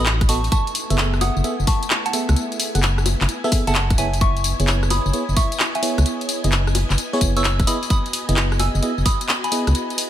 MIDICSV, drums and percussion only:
0, 0, Header, 1, 2, 480
1, 0, Start_track
1, 0, Tempo, 461538
1, 540, Time_signature, 4, 2, 24, 8
1, 10502, End_track
2, 0, Start_track
2, 0, Title_t, "Drums"
2, 60, Note_on_c, 9, 39, 125
2, 60, Note_on_c, 9, 54, 42
2, 164, Note_off_c, 9, 39, 0
2, 164, Note_off_c, 9, 54, 0
2, 220, Note_on_c, 9, 36, 111
2, 220, Note_on_c, 9, 37, 55
2, 220, Note_on_c, 9, 42, 53
2, 220, Note_on_c, 9, 54, 20
2, 300, Note_off_c, 9, 54, 0
2, 300, Note_on_c, 9, 46, 114
2, 300, Note_on_c, 9, 54, 75
2, 324, Note_off_c, 9, 36, 0
2, 324, Note_off_c, 9, 37, 0
2, 324, Note_off_c, 9, 42, 0
2, 404, Note_off_c, 9, 46, 0
2, 404, Note_off_c, 9, 54, 0
2, 460, Note_on_c, 9, 46, 61
2, 460, Note_on_c, 9, 54, 30
2, 539, Note_off_c, 9, 54, 0
2, 539, Note_on_c, 9, 42, 63
2, 539, Note_on_c, 9, 54, 42
2, 540, Note_on_c, 9, 36, 127
2, 564, Note_off_c, 9, 46, 0
2, 643, Note_off_c, 9, 42, 0
2, 643, Note_off_c, 9, 54, 0
2, 644, Note_off_c, 9, 36, 0
2, 700, Note_on_c, 9, 42, 36
2, 700, Note_on_c, 9, 54, 21
2, 779, Note_off_c, 9, 54, 0
2, 779, Note_on_c, 9, 46, 107
2, 779, Note_on_c, 9, 54, 75
2, 804, Note_off_c, 9, 42, 0
2, 883, Note_off_c, 9, 46, 0
2, 883, Note_off_c, 9, 54, 0
2, 940, Note_on_c, 9, 42, 60
2, 940, Note_on_c, 9, 54, 31
2, 1020, Note_off_c, 9, 54, 0
2, 1020, Note_on_c, 9, 39, 127
2, 1020, Note_on_c, 9, 54, 45
2, 1044, Note_off_c, 9, 42, 0
2, 1124, Note_off_c, 9, 39, 0
2, 1124, Note_off_c, 9, 54, 0
2, 1181, Note_on_c, 9, 37, 68
2, 1181, Note_on_c, 9, 54, 21
2, 1260, Note_off_c, 9, 54, 0
2, 1260, Note_on_c, 9, 46, 102
2, 1260, Note_on_c, 9, 54, 72
2, 1260, Note_on_c, 9, 60, 83
2, 1285, Note_off_c, 9, 37, 0
2, 1364, Note_off_c, 9, 46, 0
2, 1364, Note_off_c, 9, 54, 0
2, 1364, Note_off_c, 9, 60, 0
2, 1420, Note_on_c, 9, 54, 31
2, 1500, Note_off_c, 9, 54, 0
2, 1500, Note_on_c, 9, 42, 65
2, 1500, Note_on_c, 9, 54, 43
2, 1604, Note_off_c, 9, 42, 0
2, 1604, Note_off_c, 9, 54, 0
2, 1660, Note_on_c, 9, 54, 22
2, 1740, Note_off_c, 9, 54, 0
2, 1740, Note_on_c, 9, 36, 107
2, 1740, Note_on_c, 9, 46, 96
2, 1740, Note_on_c, 9, 54, 71
2, 1844, Note_off_c, 9, 36, 0
2, 1844, Note_off_c, 9, 46, 0
2, 1844, Note_off_c, 9, 54, 0
2, 1900, Note_on_c, 9, 42, 60
2, 1900, Note_on_c, 9, 54, 30
2, 1979, Note_off_c, 9, 54, 0
2, 1979, Note_on_c, 9, 39, 125
2, 1979, Note_on_c, 9, 54, 43
2, 2004, Note_off_c, 9, 42, 0
2, 2083, Note_off_c, 9, 39, 0
2, 2083, Note_off_c, 9, 54, 0
2, 2140, Note_on_c, 9, 42, 50
2, 2140, Note_on_c, 9, 54, 21
2, 2220, Note_off_c, 9, 54, 0
2, 2220, Note_on_c, 9, 46, 105
2, 2220, Note_on_c, 9, 54, 71
2, 2244, Note_off_c, 9, 42, 0
2, 2324, Note_off_c, 9, 46, 0
2, 2324, Note_off_c, 9, 54, 0
2, 2380, Note_on_c, 9, 37, 69
2, 2380, Note_on_c, 9, 42, 35
2, 2380, Note_on_c, 9, 54, 31
2, 2459, Note_off_c, 9, 42, 0
2, 2459, Note_off_c, 9, 54, 0
2, 2459, Note_on_c, 9, 42, 63
2, 2459, Note_on_c, 9, 54, 44
2, 2484, Note_off_c, 9, 37, 0
2, 2563, Note_off_c, 9, 42, 0
2, 2563, Note_off_c, 9, 54, 0
2, 2620, Note_on_c, 9, 42, 36
2, 2620, Note_on_c, 9, 54, 22
2, 2700, Note_off_c, 9, 54, 0
2, 2700, Note_on_c, 9, 46, 109
2, 2700, Note_on_c, 9, 54, 76
2, 2724, Note_off_c, 9, 42, 0
2, 2804, Note_off_c, 9, 46, 0
2, 2804, Note_off_c, 9, 54, 0
2, 2860, Note_on_c, 9, 42, 62
2, 2860, Note_on_c, 9, 54, 34
2, 2940, Note_off_c, 9, 54, 0
2, 2940, Note_on_c, 9, 39, 125
2, 2940, Note_on_c, 9, 54, 44
2, 2964, Note_off_c, 9, 42, 0
2, 3044, Note_off_c, 9, 39, 0
2, 3044, Note_off_c, 9, 54, 0
2, 3100, Note_on_c, 9, 37, 65
2, 3100, Note_on_c, 9, 54, 21
2, 3179, Note_off_c, 9, 54, 0
2, 3179, Note_on_c, 9, 46, 104
2, 3179, Note_on_c, 9, 54, 75
2, 3179, Note_on_c, 9, 60, 85
2, 3204, Note_off_c, 9, 37, 0
2, 3283, Note_off_c, 9, 46, 0
2, 3283, Note_off_c, 9, 54, 0
2, 3283, Note_off_c, 9, 60, 0
2, 3340, Note_on_c, 9, 39, 66
2, 3340, Note_on_c, 9, 54, 32
2, 3419, Note_off_c, 9, 54, 0
2, 3419, Note_on_c, 9, 42, 67
2, 3419, Note_on_c, 9, 54, 44
2, 3444, Note_off_c, 9, 39, 0
2, 3523, Note_off_c, 9, 42, 0
2, 3523, Note_off_c, 9, 54, 0
2, 3580, Note_on_c, 9, 54, 22
2, 3660, Note_off_c, 9, 54, 0
2, 3660, Note_on_c, 9, 36, 107
2, 3660, Note_on_c, 9, 46, 96
2, 3660, Note_on_c, 9, 54, 73
2, 3764, Note_off_c, 9, 36, 0
2, 3764, Note_off_c, 9, 46, 0
2, 3764, Note_off_c, 9, 54, 0
2, 3820, Note_on_c, 9, 42, 62
2, 3820, Note_on_c, 9, 54, 32
2, 3900, Note_off_c, 9, 54, 0
2, 3900, Note_on_c, 9, 39, 123
2, 3900, Note_on_c, 9, 54, 45
2, 3924, Note_off_c, 9, 42, 0
2, 4004, Note_off_c, 9, 39, 0
2, 4004, Note_off_c, 9, 54, 0
2, 4060, Note_on_c, 9, 37, 53
2, 4060, Note_on_c, 9, 42, 51
2, 4060, Note_on_c, 9, 54, 21
2, 4061, Note_on_c, 9, 36, 107
2, 4140, Note_off_c, 9, 54, 0
2, 4140, Note_on_c, 9, 46, 100
2, 4140, Note_on_c, 9, 54, 78
2, 4164, Note_off_c, 9, 37, 0
2, 4164, Note_off_c, 9, 42, 0
2, 4165, Note_off_c, 9, 36, 0
2, 4244, Note_off_c, 9, 46, 0
2, 4244, Note_off_c, 9, 54, 0
2, 4301, Note_on_c, 9, 46, 58
2, 4301, Note_on_c, 9, 54, 32
2, 4380, Note_off_c, 9, 54, 0
2, 4380, Note_on_c, 9, 36, 118
2, 4380, Note_on_c, 9, 42, 68
2, 4380, Note_on_c, 9, 54, 45
2, 4405, Note_off_c, 9, 46, 0
2, 4484, Note_off_c, 9, 36, 0
2, 4484, Note_off_c, 9, 42, 0
2, 4484, Note_off_c, 9, 54, 0
2, 4541, Note_on_c, 9, 42, 38
2, 4541, Note_on_c, 9, 54, 22
2, 4620, Note_off_c, 9, 54, 0
2, 4620, Note_on_c, 9, 46, 105
2, 4620, Note_on_c, 9, 54, 81
2, 4645, Note_off_c, 9, 42, 0
2, 4724, Note_off_c, 9, 46, 0
2, 4724, Note_off_c, 9, 54, 0
2, 4780, Note_on_c, 9, 42, 65
2, 4780, Note_on_c, 9, 54, 35
2, 4861, Note_off_c, 9, 54, 0
2, 4861, Note_on_c, 9, 39, 125
2, 4861, Note_on_c, 9, 54, 47
2, 4884, Note_off_c, 9, 42, 0
2, 4965, Note_off_c, 9, 39, 0
2, 4965, Note_off_c, 9, 54, 0
2, 5021, Note_on_c, 9, 37, 63
2, 5021, Note_on_c, 9, 54, 23
2, 5100, Note_off_c, 9, 54, 0
2, 5100, Note_on_c, 9, 46, 104
2, 5100, Note_on_c, 9, 54, 77
2, 5100, Note_on_c, 9, 60, 85
2, 5125, Note_off_c, 9, 37, 0
2, 5204, Note_off_c, 9, 46, 0
2, 5204, Note_off_c, 9, 54, 0
2, 5204, Note_off_c, 9, 60, 0
2, 5260, Note_on_c, 9, 54, 34
2, 5340, Note_off_c, 9, 54, 0
2, 5340, Note_on_c, 9, 42, 68
2, 5340, Note_on_c, 9, 54, 46
2, 5444, Note_off_c, 9, 42, 0
2, 5444, Note_off_c, 9, 54, 0
2, 5500, Note_on_c, 9, 54, 23
2, 5580, Note_off_c, 9, 54, 0
2, 5580, Note_on_c, 9, 36, 108
2, 5580, Note_on_c, 9, 46, 99
2, 5580, Note_on_c, 9, 54, 75
2, 5684, Note_off_c, 9, 36, 0
2, 5684, Note_off_c, 9, 46, 0
2, 5684, Note_off_c, 9, 54, 0
2, 5741, Note_on_c, 9, 42, 66
2, 5741, Note_on_c, 9, 54, 33
2, 5820, Note_off_c, 9, 54, 0
2, 5820, Note_on_c, 9, 39, 122
2, 5820, Note_on_c, 9, 54, 46
2, 5845, Note_off_c, 9, 42, 0
2, 5924, Note_off_c, 9, 39, 0
2, 5924, Note_off_c, 9, 54, 0
2, 5980, Note_on_c, 9, 42, 55
2, 5980, Note_on_c, 9, 54, 22
2, 6060, Note_off_c, 9, 54, 0
2, 6060, Note_on_c, 9, 46, 104
2, 6060, Note_on_c, 9, 54, 79
2, 6084, Note_off_c, 9, 42, 0
2, 6164, Note_off_c, 9, 46, 0
2, 6164, Note_off_c, 9, 54, 0
2, 6220, Note_on_c, 9, 37, 67
2, 6220, Note_on_c, 9, 42, 37
2, 6220, Note_on_c, 9, 54, 34
2, 6300, Note_off_c, 9, 42, 0
2, 6300, Note_off_c, 9, 54, 0
2, 6300, Note_on_c, 9, 42, 68
2, 6300, Note_on_c, 9, 54, 45
2, 6324, Note_off_c, 9, 37, 0
2, 6404, Note_off_c, 9, 42, 0
2, 6404, Note_off_c, 9, 54, 0
2, 6460, Note_on_c, 9, 42, 38
2, 6460, Note_on_c, 9, 54, 23
2, 6540, Note_off_c, 9, 54, 0
2, 6540, Note_on_c, 9, 46, 105
2, 6540, Note_on_c, 9, 54, 78
2, 6564, Note_off_c, 9, 42, 0
2, 6644, Note_off_c, 9, 46, 0
2, 6644, Note_off_c, 9, 54, 0
2, 6700, Note_on_c, 9, 42, 69
2, 6700, Note_on_c, 9, 54, 34
2, 6780, Note_off_c, 9, 54, 0
2, 6780, Note_on_c, 9, 39, 119
2, 6780, Note_on_c, 9, 54, 47
2, 6804, Note_off_c, 9, 42, 0
2, 6884, Note_off_c, 9, 39, 0
2, 6884, Note_off_c, 9, 54, 0
2, 6940, Note_on_c, 9, 37, 63
2, 6940, Note_on_c, 9, 54, 22
2, 7019, Note_off_c, 9, 54, 0
2, 7019, Note_on_c, 9, 46, 103
2, 7019, Note_on_c, 9, 54, 79
2, 7019, Note_on_c, 9, 60, 80
2, 7044, Note_off_c, 9, 37, 0
2, 7123, Note_off_c, 9, 46, 0
2, 7123, Note_off_c, 9, 54, 0
2, 7123, Note_off_c, 9, 60, 0
2, 7180, Note_on_c, 9, 39, 61
2, 7180, Note_on_c, 9, 54, 34
2, 7260, Note_off_c, 9, 54, 0
2, 7260, Note_on_c, 9, 42, 73
2, 7260, Note_on_c, 9, 54, 47
2, 7284, Note_off_c, 9, 39, 0
2, 7364, Note_off_c, 9, 42, 0
2, 7364, Note_off_c, 9, 54, 0
2, 7420, Note_on_c, 9, 54, 23
2, 7499, Note_on_c, 9, 36, 96
2, 7500, Note_off_c, 9, 54, 0
2, 7500, Note_on_c, 9, 46, 97
2, 7500, Note_on_c, 9, 54, 78
2, 7603, Note_off_c, 9, 36, 0
2, 7604, Note_off_c, 9, 46, 0
2, 7604, Note_off_c, 9, 54, 0
2, 7661, Note_on_c, 9, 42, 66
2, 7661, Note_on_c, 9, 54, 33
2, 7740, Note_off_c, 9, 54, 0
2, 7740, Note_on_c, 9, 39, 116
2, 7740, Note_on_c, 9, 54, 46
2, 7765, Note_off_c, 9, 42, 0
2, 7844, Note_off_c, 9, 39, 0
2, 7844, Note_off_c, 9, 54, 0
2, 7900, Note_on_c, 9, 36, 102
2, 7900, Note_on_c, 9, 37, 48
2, 7900, Note_on_c, 9, 42, 54
2, 7900, Note_on_c, 9, 54, 22
2, 7980, Note_off_c, 9, 54, 0
2, 7980, Note_on_c, 9, 46, 107
2, 7980, Note_on_c, 9, 54, 81
2, 8004, Note_off_c, 9, 36, 0
2, 8004, Note_off_c, 9, 37, 0
2, 8004, Note_off_c, 9, 42, 0
2, 8084, Note_off_c, 9, 46, 0
2, 8084, Note_off_c, 9, 54, 0
2, 8140, Note_on_c, 9, 46, 62
2, 8140, Note_on_c, 9, 54, 34
2, 8219, Note_on_c, 9, 36, 117
2, 8220, Note_off_c, 9, 54, 0
2, 8220, Note_on_c, 9, 42, 69
2, 8220, Note_on_c, 9, 54, 43
2, 8244, Note_off_c, 9, 46, 0
2, 8323, Note_off_c, 9, 36, 0
2, 8324, Note_off_c, 9, 42, 0
2, 8324, Note_off_c, 9, 54, 0
2, 8380, Note_on_c, 9, 42, 39
2, 8380, Note_on_c, 9, 54, 22
2, 8459, Note_off_c, 9, 54, 0
2, 8459, Note_on_c, 9, 46, 115
2, 8459, Note_on_c, 9, 54, 75
2, 8484, Note_off_c, 9, 42, 0
2, 8563, Note_off_c, 9, 46, 0
2, 8563, Note_off_c, 9, 54, 0
2, 8620, Note_on_c, 9, 42, 73
2, 8620, Note_on_c, 9, 54, 33
2, 8700, Note_off_c, 9, 54, 0
2, 8700, Note_on_c, 9, 39, 116
2, 8700, Note_on_c, 9, 54, 45
2, 8724, Note_off_c, 9, 42, 0
2, 8804, Note_off_c, 9, 39, 0
2, 8804, Note_off_c, 9, 54, 0
2, 8860, Note_on_c, 9, 37, 65
2, 8860, Note_on_c, 9, 54, 22
2, 8939, Note_off_c, 9, 54, 0
2, 8939, Note_on_c, 9, 46, 111
2, 8939, Note_on_c, 9, 54, 77
2, 8939, Note_on_c, 9, 60, 79
2, 8964, Note_off_c, 9, 37, 0
2, 9043, Note_off_c, 9, 46, 0
2, 9043, Note_off_c, 9, 54, 0
2, 9043, Note_off_c, 9, 60, 0
2, 9099, Note_on_c, 9, 54, 33
2, 9179, Note_off_c, 9, 54, 0
2, 9179, Note_on_c, 9, 42, 74
2, 9179, Note_on_c, 9, 54, 45
2, 9283, Note_off_c, 9, 42, 0
2, 9283, Note_off_c, 9, 54, 0
2, 9339, Note_on_c, 9, 54, 23
2, 9419, Note_off_c, 9, 54, 0
2, 9419, Note_on_c, 9, 36, 100
2, 9419, Note_on_c, 9, 46, 108
2, 9419, Note_on_c, 9, 54, 75
2, 9523, Note_off_c, 9, 36, 0
2, 9523, Note_off_c, 9, 46, 0
2, 9523, Note_off_c, 9, 54, 0
2, 9579, Note_on_c, 9, 42, 65
2, 9579, Note_on_c, 9, 54, 33
2, 9659, Note_off_c, 9, 54, 0
2, 9659, Note_on_c, 9, 39, 116
2, 9659, Note_on_c, 9, 54, 45
2, 9683, Note_off_c, 9, 42, 0
2, 9763, Note_off_c, 9, 39, 0
2, 9763, Note_off_c, 9, 54, 0
2, 9819, Note_on_c, 9, 42, 57
2, 9819, Note_on_c, 9, 54, 21
2, 9899, Note_off_c, 9, 54, 0
2, 9899, Note_on_c, 9, 46, 116
2, 9899, Note_on_c, 9, 54, 80
2, 9923, Note_off_c, 9, 42, 0
2, 10003, Note_off_c, 9, 46, 0
2, 10003, Note_off_c, 9, 54, 0
2, 10060, Note_on_c, 9, 37, 68
2, 10060, Note_on_c, 9, 42, 38
2, 10060, Note_on_c, 9, 54, 32
2, 10139, Note_off_c, 9, 42, 0
2, 10139, Note_off_c, 9, 54, 0
2, 10139, Note_on_c, 9, 42, 69
2, 10139, Note_on_c, 9, 54, 41
2, 10164, Note_off_c, 9, 37, 0
2, 10243, Note_off_c, 9, 42, 0
2, 10243, Note_off_c, 9, 54, 0
2, 10300, Note_on_c, 9, 42, 39
2, 10300, Note_on_c, 9, 54, 20
2, 10379, Note_off_c, 9, 54, 0
2, 10379, Note_on_c, 9, 46, 118
2, 10379, Note_on_c, 9, 54, 72
2, 10404, Note_off_c, 9, 42, 0
2, 10483, Note_off_c, 9, 46, 0
2, 10483, Note_off_c, 9, 54, 0
2, 10502, End_track
0, 0, End_of_file